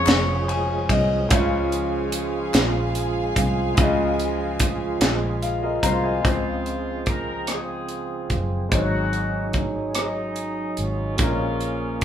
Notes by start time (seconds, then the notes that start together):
Already playing: C#3 F3 G#3 C#4 F4 G#4 C#5
0.06 F1, snare, clap, ride
0.48 G#5, ride
0.89 C2 D#5, kick, ride
1.29 C#2 C#3 F3 G#3 C#4 F4 G#4 F5 G#5, kick, closed hi-hat
1.34 C#5
1.72 closed hi-hat
2.12 closed hi-hat
2.54 A#1, snare, clap, closed hi-hat
2.95 closed hi-hat
3.36 C2, kick, closed hi-hat
3.75 C#2 C#3 G#3 F4, kick, closed hi-hat
3.80 D#5
4.19 closed hi-hat
4.60 kick, closed hi-hat
5.01 A#1, snare, clap, closed hi-hat
5.42 F5, closed hi-hat
5.63 A#4 D#5
5.83 C2 G#3 C4 F4 C5 F5 A#5, kick, closed hi-hat
6.04 D#5 G#5
6.22 C#2 C#3 F3 G#3 C4 F4, kick, closed hi-hat
6.26 C4 G#4 C5
6.66 closed hi-hat
7.06 A#4, kick, closed hi-hat
7.47 C4 F4 G#4, cross-stick, closed hi-hat
7.89 closed hi-hat
8.30 F#1, kick, closed hi-hat
8.69 G#1 G#2 F#3 G#3 C#4 D#4 F#4 G#4, kick, closed hi-hat
8.73 F#3 C5
8.81 C#5
9.13 closed hi-hat
9.53 kick, closed hi-hat
9.95 F#3 D#4, cross-stick, closed hi-hat
10.36 closed hi-hat
10.77 G#1, closed hi-hat
10.82 G#3 C#4 F4
11.17 A#1 A#2 F3 G#3 A#3 C#4 F4 G#4, kick, closed hi-hat
11.23 A#4
11.61 closed hi-hat
12.01 closed hi-hat